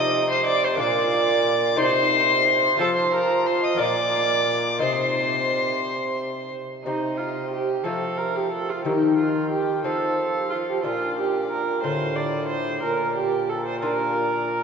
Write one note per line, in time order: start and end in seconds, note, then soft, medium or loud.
0.00 0.75 C3 medium
0.00 0.80 C3 medium
0.00 0.75 C4 medium
0.00 0.76 D#4 medium
0.00 0.29 D#5 loud
0.00 0.29 D#6 loud
0.30 0.46 C5 loud
0.30 0.45 C6 loud
0.46 0.66 D5 loud
0.46 0.65 D6 loud
0.64 0.80 C5 medium
0.64 0.79 C6 loud
0.75 1.75 A#2 medium
0.75 1.75 A#3 medium
0.75 1.75 D4 medium
0.75 1.76 F4 medium
0.80 1.78 A#2 medium
0.80 1.78 D5 loud
0.80 1.80 D6 loud
1.76 2.75 C3 medium
1.76 2.82 C3 medium
1.76 2.75 D#4 medium
1.76 2.76 C5 medium
1.76 2.78 C5 loud
1.76 2.79 C6 loud
2.76 3.76 F3 medium
2.76 3.75 C4 medium
2.76 3.76 F4 medium
2.76 3.77 C5 medium
2.80 3.81 F3 medium
2.80 2.87 A4 medium
2.80 2.96 A5 loud
2.96 3.15 C5 medium
2.96 3.13 C6 medium
3.13 3.47 A#4 medium
3.13 3.48 A#5 loud
3.46 3.62 C5 medium
3.46 3.66 C6 loud
3.63 3.81 D#5 medium
3.63 3.79 D#6 loud
3.76 4.78 A#2 medium
3.76 4.77 A#3 medium
3.76 4.77 F4 medium
3.76 4.78 D5 medium
3.76 4.80 D5 loud
3.76 4.79 D6 loud
3.81 4.84 A#2 medium
4.79 6.49 C3 medium
4.79 6.54 C3 medium
4.79 6.80 D#4 medium
4.79 6.48 C5 loud
4.79 6.81 D#5 medium
4.79 6.48 C6 loud
6.85 7.82 C3 soft
6.85 7.82 C3 medium
6.85 7.82 C4 soft
6.85 7.19 D#4 medium
6.85 7.82 G4 soft
6.85 7.86 D#5 medium
7.17 7.50 F4 medium
7.51 7.85 G4 medium
7.84 8.81 F3 soft
7.84 8.84 F3 medium
7.84 8.81 A3 soft
7.84 8.81 C4 soft
7.84 8.81 F4 soft
7.84 8.19 A4 medium
7.84 8.85 F5 medium
8.17 8.37 A#4 medium
8.36 8.51 G4 medium
8.52 8.71 A4 medium
8.69 8.84 F4 medium
8.85 9.80 D#3 soft
8.85 9.83 D#3 medium
8.85 9.81 A#3 soft
8.85 9.81 D#4 soft
8.85 9.17 G4 medium
8.85 9.81 G4 soft
8.85 9.87 G5 medium
9.17 9.50 F4 medium
9.51 9.84 G4 medium
9.84 10.80 F3 soft
9.84 10.85 F3 medium
9.84 10.80 C4 soft
9.84 10.80 F4 soft
9.84 10.49 A4 medium
9.84 10.83 F5 medium
10.50 10.57 F4 medium
10.69 10.83 G4 medium
10.83 11.79 A#2 soft
10.83 11.84 A#2 medium
10.83 11.79 D4 soft
10.83 11.16 F4 medium
10.83 11.80 F4 soft
10.83 11.85 D5 medium
11.18 11.50 G4 medium
11.50 11.83 A#4 medium
11.83 12.82 A2 medium
11.83 12.78 A2 soft
11.83 12.78 D3 soft
11.83 12.79 F4 soft
11.83 12.17 C5 medium
11.83 12.32 F5 medium
12.16 12.48 D5 medium
12.33 12.85 D#5 medium
12.49 12.81 C5 medium
12.82 14.63 A#2 medium
12.82 13.15 A#4 medium
12.82 13.81 D5 medium
13.16 13.50 G4 medium
13.49 13.65 A4 medium
13.66 13.80 C5 medium
13.81 14.63 A#3 soft
13.81 14.63 D4 soft
13.81 14.63 F4 medium
13.81 14.63 A#4 medium
13.81 14.63 D5 medium